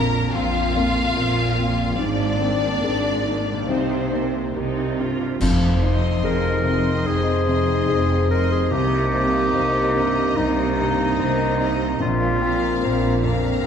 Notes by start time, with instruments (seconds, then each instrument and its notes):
Already playing: double bass section A#1, felt piano A#1 F2 C4 F4 A#4, cello section A#2, harp A#2 A#3 F4 C5, viola section A#3, violin section A#4 A#5
0.34 double bass section A#1, cello section A#2, viola section C4, felt piano C4, violin section F4 F5
0.75 felt piano F2, viola section A#3
1.16 double bass section A#1, cello section A#2, viola section C4, felt piano F4 A#4
1.58 viola section A#3, felt piano C4
1.82 harp G#2
1.86 harp A#3
1.91 harp G#4
1.95 double bass section G#1, felt piano G#2, viola section G#3, harp C5
1.99 cello section G#2, viola section C4, violin section D4 D5
2.41 viola section D#3 A#3, felt piano C4
2.83 double bass section G#1, cello section G#2, viola section G#3 C4, felt piano G#4 A#4
3.26 felt piano D#3, viola section D#3 A#3
3.52 harp C3
3.57 harp A#3
3.61 harp G4
3.65 felt piano C2, cello section C3, viola section C4 D#4, harp D#5
3.70 double bass section C2, violin section C4 C5
4.13 viola section A#3 C4, felt piano D#4
4.56 double bass section C2, cello section C3, viola section D#4, felt piano G4 A#4
4.98 felt piano G2, viola section F4
5.40 double bass section F1, felt piano F2, cello section F2, harp F3, french horn section C4 D#4, concert bass drum, crash
5.82 viola section C4, felt piano D#4, harp D#4, violin section D#5 C6
6.24 double bass section F1, cello section F2, felt piano G#4 C5, clarinet A#4, harp C5
6.64 felt piano C3, viola section C4, harp D#5, violin section D#5 C6
7.06 double bass section F1, cello section F2, harp C4, felt piano D#4, clarinet G#4
7.47 felt piano C3, viola section C4, harp D#4, violin section D#5 C6
7.89 double bass section F1, cello section F2, felt piano G#4 C5, harp C5
8.30 viola section C4, felt piano D#4, clarinet A#4, harp D#5, violin section D#5 C6
8.52 clarinet G#4
8.70 felt piano C2, double bass section C2, harp C3, cello section C3, french horn section A#3 D#4, viola section C4, clarinet G4, violin section D#5 A#5
9.12 harp A#3, viola section C4, felt piano D#4, violin section D#5 A#5
9.54 double bass section C2, cello section C3, felt piano A#4 C5, harp C5
9.94 felt piano G2, viola section C4, harp A#4, violin section D#5 A#5
10.36 double bass section C2, cello section C3, harp G3, felt piano D#4, clarinet D#4
10.77 felt piano G2, harp A#3, viola section C4, violin section D#5 A#5
11.19 double bass section C2, cello section C3, felt piano A#4 C5, harp C5
11.59 viola section C4, felt piano D#4, harp A#4, violin section D#5 A#5
12.00 felt piano A#1, double bass section A#1, cello section A#2, harp A#2, french horn section A#3 C4, clarinet F4
12.41 harp A#3, felt piano C4, viola section C4, violin section F5 A#5
12.82 double bass section A#1, cello section A#2, felt piano A#4 C5, harp C5
13.23 felt piano F2, viola section C4, harp A#4, violin section F5 A#5
13.64 felt piano C4